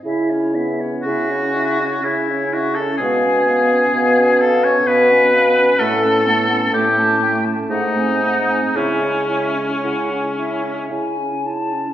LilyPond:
<<
  \new Staff \with { instrumentName = "Flute" } { \time 3/4 \key cis \minor \tempo 4 = 61 e''16 cis''16 e''16 cis''16 e''16 cis''16 e''16 cis''16 e''16 cis''16 e''16 cis''16 | eis''16 gis''16 eis''16 gis''16 eis''16 gis''16 eis''16 gis''16 eis''16 gis''16 eis''16 gis''16 | fis''16 a''16 fis''16 a''16 g''16 a''16 g''16 a''16 fis''16 gis''16 fis''16 gis''16 | e''16 cis''16 e''16 cis''16 fis''8 e''8 gis''8 a''8 | }
  \new Staff \with { instrumentName = "Oboe" } { \time 3/4 \key cis \minor r4 fis'4 e'8 fis'16 a'16 | gis'4. a'16 cis''16 b'4 | a'4 g'8. r16 dis'4 | cis'2 r4 | }
  \new Staff \with { instrumentName = "Clarinet" } { \time 3/4 \key cis \minor e'16 cis'16 e'16 cis'16 e'16 cis'16 e'16 cis'16 e'16 cis'16 e'16 cis'16 | b16 cis'16 b16 cis'16 b16 cis'16 b16 cis'16 b16 cis'16 b16 cis'16 | a16 cis'16 a16 cis'16 a16 cis'16 a16 cis'16 a16 bis16 a16 bis16 | e'16 cis'16 e'16 cis'16 e'16 cis'16 e'16 cis'16 e'16 cis'16 e'16 cis'16 | }
  \new Staff \with { instrumentName = "French horn" } { \time 3/4 \key cis \minor e'8 b8 cis'4 cis'4 | gis8 b2~ b8 | cis'8 b8 a4. r8 | gis2~ gis8 r8 | }
  \new Staff \with { instrumentName = "Bassoon" } { \clef bass \time 3/4 \key cis \minor cis4 cis4 cis4 | b,4 b,4 b,4 | a,4 a,4 gis,4 | cis4 cis4 cis4 | }
>>